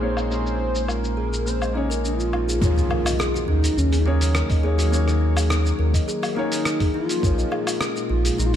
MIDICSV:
0, 0, Header, 1, 8, 480
1, 0, Start_track
1, 0, Tempo, 576923
1, 255, Time_signature, 4, 2, 24, 8
1, 7123, End_track
2, 0, Start_track
2, 0, Title_t, "Soft synth lead"
2, 0, Program_c, 0, 80
2, 0, Note_on_c, 0, 72, 108
2, 217, Note_off_c, 0, 72, 0
2, 245, Note_on_c, 0, 72, 107
2, 730, Note_on_c, 0, 70, 86
2, 743, Note_off_c, 0, 72, 0
2, 1207, Note_off_c, 0, 70, 0
2, 1212, Note_on_c, 0, 72, 89
2, 1437, Note_off_c, 0, 72, 0
2, 1462, Note_on_c, 0, 61, 87
2, 1568, Note_off_c, 0, 61, 0
2, 1699, Note_on_c, 0, 65, 114
2, 2144, Note_off_c, 0, 65, 0
2, 2183, Note_on_c, 0, 65, 116
2, 2866, Note_off_c, 0, 65, 0
2, 2907, Note_on_c, 0, 63, 93
2, 3142, Note_on_c, 0, 61, 88
2, 3155, Note_off_c, 0, 63, 0
2, 3315, Note_off_c, 0, 61, 0
2, 3320, Note_on_c, 0, 63, 58
2, 3385, Note_on_c, 0, 61, 89
2, 3397, Note_off_c, 0, 63, 0
2, 3860, Note_off_c, 0, 61, 0
2, 5293, Note_on_c, 0, 63, 108
2, 5741, Note_off_c, 0, 63, 0
2, 5771, Note_on_c, 0, 65, 124
2, 6460, Note_off_c, 0, 65, 0
2, 6731, Note_on_c, 0, 65, 105
2, 6976, Note_on_c, 0, 63, 100
2, 6988, Note_off_c, 0, 65, 0
2, 7035, Note_on_c, 0, 65, 90
2, 7047, Note_off_c, 0, 63, 0
2, 7093, Note_on_c, 0, 63, 108
2, 7106, Note_off_c, 0, 65, 0
2, 7123, Note_off_c, 0, 63, 0
2, 7123, End_track
3, 0, Start_track
3, 0, Title_t, "Felt piano"
3, 0, Program_c, 1, 0
3, 0, Control_c, 1, 64, 127
3, 0, Note_on_c, 1, 58, 88
3, 0, Note_on_c, 1, 61, 69
3, 0, Note_on_c, 1, 63, 77
3, 0, Note_on_c, 1, 68, 81
3, 0, Note_on_c, 1, 73, 102
3, 6, Note_off_c, 1, 58, 0
3, 6, Note_on_c, 1, 58, 80
3, 12, Note_off_c, 1, 63, 0
3, 12, Note_on_c, 1, 63, 73
3, 17, Note_off_c, 1, 68, 0
3, 17, Note_on_c, 1, 68, 76
3, 24, Note_off_c, 1, 73, 0
3, 24, Note_on_c, 1, 73, 89
3, 223, Note_off_c, 1, 58, 0
3, 226, Note_off_c, 1, 63, 0
3, 229, Note_off_c, 1, 68, 0
3, 232, Note_off_c, 1, 73, 0
3, 238, Note_on_c, 1, 58, 75
3, 249, Note_on_c, 1, 63, 66
3, 259, Note_on_c, 1, 68, 68
3, 271, Note_off_c, 1, 61, 0
3, 271, Note_on_c, 1, 61, 82
3, 1419, Note_off_c, 1, 58, 0
3, 1425, Note_off_c, 1, 63, 0
3, 1430, Note_off_c, 1, 68, 0
3, 1436, Note_off_c, 1, 61, 0
3, 1439, Note_on_c, 1, 58, 90
3, 1449, Note_on_c, 1, 63, 80
3, 1461, Note_on_c, 1, 68, 83
3, 1474, Note_on_c, 1, 73, 95
3, 2140, Note_off_c, 1, 58, 0
3, 2145, Note_off_c, 1, 63, 0
3, 2151, Note_off_c, 1, 68, 0
3, 2157, Note_off_c, 1, 73, 0
3, 2160, Note_on_c, 1, 58, 68
3, 2172, Note_on_c, 1, 63, 66
3, 2181, Note_on_c, 1, 68, 68
3, 2187, Control_c, 1, 64, 0
3, 2195, Note_on_c, 1, 73, 75
3, 2344, Control_c, 1, 64, 127
3, 3340, Note_off_c, 1, 58, 0
3, 3346, Note_off_c, 1, 63, 0
3, 3351, Note_off_c, 1, 68, 0
3, 3358, Note_off_c, 1, 73, 0
3, 3372, Note_on_c, 1, 58, 99
3, 3376, Note_on_c, 1, 63, 86
3, 3382, Note_on_c, 1, 68, 87
3, 3388, Note_on_c, 1, 73, 108
3, 3826, Note_off_c, 1, 58, 0
3, 3828, Note_off_c, 1, 63, 0
3, 3831, Note_off_c, 1, 68, 0
3, 3834, Note_off_c, 1, 73, 0
3, 3853, Note_on_c, 1, 58, 88
3, 3859, Note_on_c, 1, 63, 83
3, 3862, Note_on_c, 1, 68, 83
3, 3869, Note_on_c, 1, 73, 96
3, 4067, Note_off_c, 1, 58, 0
3, 4069, Note_off_c, 1, 63, 0
3, 4071, Note_off_c, 1, 68, 0
3, 4075, Note_off_c, 1, 73, 0
3, 4080, Note_on_c, 1, 58, 88
3, 4091, Note_on_c, 1, 63, 76
3, 4102, Note_on_c, 1, 68, 79
3, 4113, Note_on_c, 1, 73, 88
3, 5260, Note_off_c, 1, 58, 0
3, 5266, Note_off_c, 1, 63, 0
3, 5271, Note_off_c, 1, 68, 0
3, 5276, Note_off_c, 1, 73, 0
3, 5282, Note_on_c, 1, 58, 98
3, 5294, Note_on_c, 1, 63, 88
3, 5305, Note_on_c, 1, 68, 83
3, 5314, Note_on_c, 1, 73, 109
3, 5981, Note_off_c, 1, 58, 0
3, 5987, Note_off_c, 1, 63, 0
3, 5992, Note_off_c, 1, 68, 0
3, 5997, Note_off_c, 1, 73, 0
3, 5997, Note_on_c, 1, 58, 71
3, 6010, Note_on_c, 1, 63, 67
3, 6020, Note_on_c, 1, 68, 61
3, 6027, Control_c, 1, 64, 0
3, 6032, Note_on_c, 1, 73, 78
3, 6190, Control_c, 1, 64, 127
3, 7123, Note_off_c, 1, 58, 0
3, 7123, Note_off_c, 1, 63, 0
3, 7123, Note_off_c, 1, 68, 0
3, 7123, Note_off_c, 1, 73, 0
3, 7123, End_track
4, 0, Start_track
4, 0, Title_t, "Kalimba"
4, 0, Program_c, 2, 108
4, 10, Note_on_c, 2, 58, 94
4, 126, Note_off_c, 2, 58, 0
4, 138, Note_on_c, 2, 75, 69
4, 242, Note_off_c, 2, 75, 0
4, 252, Note_on_c, 2, 63, 89
4, 373, Note_off_c, 2, 63, 0
4, 376, Note_on_c, 2, 61, 69
4, 487, Note_off_c, 2, 61, 0
4, 494, Note_on_c, 2, 63, 63
4, 614, Note_off_c, 2, 63, 0
4, 619, Note_on_c, 2, 58, 67
4, 728, Note_off_c, 2, 58, 0
4, 734, Note_on_c, 2, 65, 74
4, 847, Note_off_c, 2, 65, 0
4, 860, Note_on_c, 2, 61, 63
4, 969, Note_off_c, 2, 61, 0
4, 975, Note_on_c, 2, 68, 87
4, 1047, Note_off_c, 2, 68, 0
4, 1100, Note_on_c, 2, 68, 64
4, 1203, Note_off_c, 2, 68, 0
4, 1215, Note_on_c, 2, 58, 90
4, 1328, Note_off_c, 2, 58, 0
4, 1342, Note_on_c, 2, 75, 70
4, 1444, Note_off_c, 2, 75, 0
4, 1459, Note_on_c, 2, 75, 63
4, 1570, Note_off_c, 2, 75, 0
4, 1581, Note_on_c, 2, 70, 89
4, 1646, Note_off_c, 2, 70, 0
4, 1696, Note_on_c, 2, 63, 71
4, 1815, Note_off_c, 2, 63, 0
4, 1823, Note_on_c, 2, 65, 68
4, 1925, Note_off_c, 2, 65, 0
4, 1936, Note_on_c, 2, 63, 71
4, 2048, Note_off_c, 2, 63, 0
4, 2062, Note_on_c, 2, 68, 67
4, 2170, Note_off_c, 2, 68, 0
4, 2178, Note_on_c, 2, 63, 101
4, 2248, Note_off_c, 2, 63, 0
4, 2302, Note_on_c, 2, 61, 76
4, 2410, Note_off_c, 2, 61, 0
4, 2415, Note_on_c, 2, 70, 69
4, 2534, Note_off_c, 2, 70, 0
4, 2541, Note_on_c, 2, 75, 71
4, 2644, Note_off_c, 2, 75, 0
4, 2655, Note_on_c, 2, 68, 103
4, 2768, Note_off_c, 2, 68, 0
4, 2781, Note_on_c, 2, 66, 92
4, 2890, Note_off_c, 2, 66, 0
4, 2894, Note_on_c, 2, 61, 100
4, 3014, Note_off_c, 2, 61, 0
4, 3019, Note_on_c, 2, 63, 73
4, 3123, Note_off_c, 2, 63, 0
4, 3135, Note_on_c, 2, 63, 77
4, 3248, Note_off_c, 2, 63, 0
4, 3261, Note_on_c, 2, 68, 76
4, 3326, Note_off_c, 2, 68, 0
4, 3374, Note_on_c, 2, 63, 103
4, 3446, Note_off_c, 2, 63, 0
4, 3502, Note_on_c, 2, 61, 77
4, 3610, Note_off_c, 2, 61, 0
4, 3616, Note_on_c, 2, 70, 79
4, 3735, Note_off_c, 2, 70, 0
4, 3740, Note_on_c, 2, 75, 77
4, 3844, Note_off_c, 2, 75, 0
4, 3856, Note_on_c, 2, 68, 103
4, 3968, Note_off_c, 2, 68, 0
4, 3979, Note_on_c, 2, 66, 101
4, 4088, Note_off_c, 2, 66, 0
4, 4097, Note_on_c, 2, 61, 104
4, 4215, Note_off_c, 2, 61, 0
4, 4223, Note_on_c, 2, 63, 75
4, 4325, Note_off_c, 2, 63, 0
4, 4335, Note_on_c, 2, 63, 66
4, 4448, Note_off_c, 2, 63, 0
4, 4459, Note_on_c, 2, 68, 71
4, 4525, Note_off_c, 2, 68, 0
4, 4575, Note_on_c, 2, 63, 105
4, 4647, Note_off_c, 2, 63, 0
4, 4701, Note_on_c, 2, 61, 80
4, 4809, Note_off_c, 2, 61, 0
4, 4815, Note_on_c, 2, 70, 71
4, 4935, Note_off_c, 2, 70, 0
4, 4942, Note_on_c, 2, 75, 78
4, 5044, Note_off_c, 2, 75, 0
4, 5057, Note_on_c, 2, 68, 99
4, 5169, Note_off_c, 2, 68, 0
4, 5180, Note_on_c, 2, 66, 97
4, 5289, Note_off_c, 2, 66, 0
4, 5294, Note_on_c, 2, 61, 93
4, 5414, Note_off_c, 2, 61, 0
4, 5421, Note_on_c, 2, 63, 77
4, 5524, Note_off_c, 2, 63, 0
4, 5537, Note_on_c, 2, 63, 77
4, 5649, Note_off_c, 2, 63, 0
4, 5663, Note_on_c, 2, 68, 81
4, 5727, Note_off_c, 2, 68, 0
4, 5775, Note_on_c, 2, 63, 107
4, 5847, Note_off_c, 2, 63, 0
4, 5902, Note_on_c, 2, 61, 77
4, 6010, Note_off_c, 2, 61, 0
4, 6015, Note_on_c, 2, 70, 86
4, 6134, Note_off_c, 2, 70, 0
4, 6140, Note_on_c, 2, 75, 72
4, 6243, Note_off_c, 2, 75, 0
4, 6254, Note_on_c, 2, 68, 88
4, 6367, Note_off_c, 2, 68, 0
4, 6380, Note_on_c, 2, 65, 97
4, 6489, Note_off_c, 2, 65, 0
4, 6495, Note_on_c, 2, 61, 103
4, 6615, Note_off_c, 2, 61, 0
4, 6620, Note_on_c, 2, 63, 75
4, 6723, Note_off_c, 2, 63, 0
4, 6735, Note_on_c, 2, 63, 73
4, 6848, Note_off_c, 2, 63, 0
4, 6861, Note_on_c, 2, 68, 70
4, 6926, Note_off_c, 2, 68, 0
4, 6975, Note_on_c, 2, 63, 97
4, 7047, Note_off_c, 2, 63, 0
4, 7123, End_track
5, 0, Start_track
5, 0, Title_t, "Analog synth pad"
5, 0, Program_c, 3, 89
5, 0, Note_on_c, 3, 46, 67
5, 0, Note_on_c, 3, 56, 69
5, 0, Note_on_c, 3, 61, 94
5, 0, Note_on_c, 3, 84, 87
5, 2175, Note_off_c, 3, 56, 0
5, 2177, Note_off_c, 3, 46, 0
5, 2177, Note_off_c, 3, 84, 0
5, 2177, Note_on_c, 3, 51, 70
5, 2317, Note_on_c, 3, 54, 91
5, 2337, Note_on_c, 3, 58, 82
5, 2677, Note_on_c, 3, 73, 83
5, 3713, Note_off_c, 3, 61, 0
5, 6012, Note_off_c, 3, 73, 0
5, 6016, Note_off_c, 3, 51, 0
5, 6017, Note_off_c, 3, 54, 0
5, 6017, Note_on_c, 3, 46, 76
5, 6115, Note_on_c, 3, 56, 77
5, 6562, Note_on_c, 3, 84, 80
5, 6598, Note_on_c, 3, 61, 95
5, 6605, Note_off_c, 3, 58, 0
5, 7123, Note_off_c, 3, 46, 0
5, 7123, Note_off_c, 3, 56, 0
5, 7123, Note_off_c, 3, 61, 0
5, 7123, Note_off_c, 3, 84, 0
5, 7123, End_track
6, 0, Start_track
6, 0, Title_t, "Sub bass"
6, 0, Program_c, 4, 38
6, 0, Note_on_c, 4, 34, 80
6, 2153, Note_off_c, 4, 34, 0
6, 2178, Note_on_c, 4, 39, 95
6, 2348, Note_off_c, 4, 39, 0
6, 2898, Note_on_c, 4, 39, 100
6, 3068, Note_off_c, 4, 39, 0
6, 3138, Note_on_c, 4, 39, 90
6, 3682, Note_off_c, 4, 39, 0
6, 3741, Note_on_c, 4, 39, 80
6, 4761, Note_off_c, 4, 39, 0
6, 4816, Note_on_c, 4, 39, 101
6, 4987, Note_off_c, 4, 39, 0
6, 6017, Note_on_c, 4, 34, 95
6, 6188, Note_off_c, 4, 34, 0
6, 6738, Note_on_c, 4, 34, 101
6, 6908, Note_off_c, 4, 34, 0
6, 6978, Note_on_c, 4, 34, 93
6, 7123, Note_off_c, 4, 34, 0
6, 7123, End_track
7, 0, Start_track
7, 0, Title_t, "Impact"
7, 0, Program_c, 5, 103
7, 2177, Note_on_c, 5, 60, 79
7, 4096, Note_off_c, 5, 60, 0
7, 7123, End_track
8, 0, Start_track
8, 0, Title_t, "Drums"
8, 140, Note_on_c, 9, 77, 62
8, 146, Note_on_c, 9, 82, 60
8, 223, Note_off_c, 9, 77, 0
8, 229, Note_off_c, 9, 82, 0
8, 261, Note_on_c, 9, 82, 48
8, 345, Note_off_c, 9, 82, 0
8, 387, Note_on_c, 9, 82, 31
8, 470, Note_off_c, 9, 82, 0
8, 627, Note_on_c, 9, 82, 60
8, 710, Note_off_c, 9, 82, 0
8, 736, Note_on_c, 9, 77, 65
8, 741, Note_on_c, 9, 82, 47
8, 819, Note_off_c, 9, 77, 0
8, 825, Note_off_c, 9, 82, 0
8, 868, Note_on_c, 9, 82, 31
8, 952, Note_off_c, 9, 82, 0
8, 1110, Note_on_c, 9, 82, 60
8, 1193, Note_off_c, 9, 82, 0
8, 1223, Note_on_c, 9, 82, 49
8, 1307, Note_off_c, 9, 82, 0
8, 1346, Note_on_c, 9, 77, 67
8, 1352, Note_on_c, 9, 82, 32
8, 1429, Note_off_c, 9, 77, 0
8, 1435, Note_off_c, 9, 82, 0
8, 1591, Note_on_c, 9, 82, 60
8, 1674, Note_off_c, 9, 82, 0
8, 1705, Note_on_c, 9, 82, 52
8, 1788, Note_off_c, 9, 82, 0
8, 1830, Note_on_c, 9, 82, 31
8, 1913, Note_off_c, 9, 82, 0
8, 1940, Note_on_c, 9, 77, 63
8, 2024, Note_off_c, 9, 77, 0
8, 2072, Note_on_c, 9, 82, 55
8, 2156, Note_off_c, 9, 82, 0
8, 2177, Note_on_c, 9, 36, 124
8, 2186, Note_on_c, 9, 82, 57
8, 2260, Note_off_c, 9, 36, 0
8, 2269, Note_off_c, 9, 82, 0
8, 2311, Note_on_c, 9, 82, 33
8, 2394, Note_off_c, 9, 82, 0
8, 2418, Note_on_c, 9, 77, 60
8, 2502, Note_off_c, 9, 77, 0
8, 2546, Note_on_c, 9, 46, 59
8, 2546, Note_on_c, 9, 77, 83
8, 2551, Note_on_c, 9, 82, 71
8, 2629, Note_off_c, 9, 46, 0
8, 2629, Note_off_c, 9, 77, 0
8, 2635, Note_off_c, 9, 82, 0
8, 2661, Note_on_c, 9, 37, 97
8, 2667, Note_on_c, 9, 82, 54
8, 2744, Note_off_c, 9, 37, 0
8, 2750, Note_off_c, 9, 82, 0
8, 2793, Note_on_c, 9, 82, 33
8, 2876, Note_off_c, 9, 82, 0
8, 3027, Note_on_c, 9, 46, 57
8, 3033, Note_on_c, 9, 82, 69
8, 3111, Note_off_c, 9, 46, 0
8, 3116, Note_off_c, 9, 82, 0
8, 3146, Note_on_c, 9, 82, 51
8, 3229, Note_off_c, 9, 82, 0
8, 3266, Note_on_c, 9, 46, 44
8, 3272, Note_on_c, 9, 82, 32
8, 3349, Note_off_c, 9, 46, 0
8, 3355, Note_off_c, 9, 82, 0
8, 3504, Note_on_c, 9, 46, 58
8, 3509, Note_on_c, 9, 82, 64
8, 3587, Note_off_c, 9, 46, 0
8, 3592, Note_off_c, 9, 82, 0
8, 3617, Note_on_c, 9, 37, 104
8, 3622, Note_on_c, 9, 82, 57
8, 3700, Note_off_c, 9, 37, 0
8, 3706, Note_off_c, 9, 82, 0
8, 3742, Note_on_c, 9, 36, 96
8, 3744, Note_on_c, 9, 46, 45
8, 3750, Note_on_c, 9, 82, 33
8, 3825, Note_off_c, 9, 36, 0
8, 3828, Note_off_c, 9, 46, 0
8, 3833, Note_off_c, 9, 82, 0
8, 3984, Note_on_c, 9, 46, 56
8, 3989, Note_on_c, 9, 82, 62
8, 4067, Note_off_c, 9, 46, 0
8, 4073, Note_off_c, 9, 82, 0
8, 4104, Note_on_c, 9, 82, 54
8, 4187, Note_off_c, 9, 82, 0
8, 4223, Note_on_c, 9, 37, 33
8, 4229, Note_on_c, 9, 82, 34
8, 4307, Note_off_c, 9, 37, 0
8, 4312, Note_off_c, 9, 82, 0
8, 4465, Note_on_c, 9, 46, 57
8, 4465, Note_on_c, 9, 77, 76
8, 4471, Note_on_c, 9, 82, 70
8, 4548, Note_off_c, 9, 46, 0
8, 4548, Note_off_c, 9, 77, 0
8, 4554, Note_off_c, 9, 82, 0
8, 4578, Note_on_c, 9, 37, 98
8, 4584, Note_on_c, 9, 82, 54
8, 4662, Note_off_c, 9, 37, 0
8, 4667, Note_off_c, 9, 82, 0
8, 4710, Note_on_c, 9, 82, 34
8, 4793, Note_off_c, 9, 82, 0
8, 4940, Note_on_c, 9, 36, 64
8, 4944, Note_on_c, 9, 46, 58
8, 4949, Note_on_c, 9, 82, 70
8, 5024, Note_off_c, 9, 36, 0
8, 5027, Note_off_c, 9, 46, 0
8, 5033, Note_off_c, 9, 82, 0
8, 5062, Note_on_c, 9, 82, 54
8, 5145, Note_off_c, 9, 82, 0
8, 5184, Note_on_c, 9, 46, 40
8, 5184, Note_on_c, 9, 77, 77
8, 5190, Note_on_c, 9, 82, 33
8, 5268, Note_off_c, 9, 46, 0
8, 5268, Note_off_c, 9, 77, 0
8, 5273, Note_off_c, 9, 82, 0
8, 5422, Note_on_c, 9, 46, 57
8, 5428, Note_on_c, 9, 82, 69
8, 5506, Note_off_c, 9, 46, 0
8, 5511, Note_off_c, 9, 82, 0
8, 5536, Note_on_c, 9, 37, 104
8, 5542, Note_on_c, 9, 82, 58
8, 5619, Note_off_c, 9, 37, 0
8, 5625, Note_off_c, 9, 82, 0
8, 5661, Note_on_c, 9, 36, 103
8, 5661, Note_on_c, 9, 46, 47
8, 5666, Note_on_c, 9, 82, 34
8, 5744, Note_off_c, 9, 46, 0
8, 5745, Note_off_c, 9, 36, 0
8, 5749, Note_off_c, 9, 82, 0
8, 5902, Note_on_c, 9, 46, 50
8, 5907, Note_on_c, 9, 82, 64
8, 5985, Note_off_c, 9, 46, 0
8, 5991, Note_off_c, 9, 82, 0
8, 6017, Note_on_c, 9, 36, 127
8, 6023, Note_on_c, 9, 82, 56
8, 6100, Note_off_c, 9, 36, 0
8, 6107, Note_off_c, 9, 82, 0
8, 6146, Note_on_c, 9, 82, 35
8, 6229, Note_off_c, 9, 82, 0
8, 6256, Note_on_c, 9, 77, 57
8, 6339, Note_off_c, 9, 77, 0
8, 6381, Note_on_c, 9, 46, 54
8, 6381, Note_on_c, 9, 77, 74
8, 6387, Note_on_c, 9, 82, 77
8, 6465, Note_off_c, 9, 46, 0
8, 6465, Note_off_c, 9, 77, 0
8, 6470, Note_off_c, 9, 82, 0
8, 6494, Note_on_c, 9, 37, 98
8, 6500, Note_on_c, 9, 82, 57
8, 6578, Note_off_c, 9, 37, 0
8, 6583, Note_off_c, 9, 82, 0
8, 6627, Note_on_c, 9, 82, 34
8, 6710, Note_off_c, 9, 82, 0
8, 6863, Note_on_c, 9, 46, 55
8, 6869, Note_on_c, 9, 82, 70
8, 6946, Note_off_c, 9, 46, 0
8, 6952, Note_off_c, 9, 82, 0
8, 6983, Note_on_c, 9, 82, 53
8, 7066, Note_off_c, 9, 82, 0
8, 7123, End_track
0, 0, End_of_file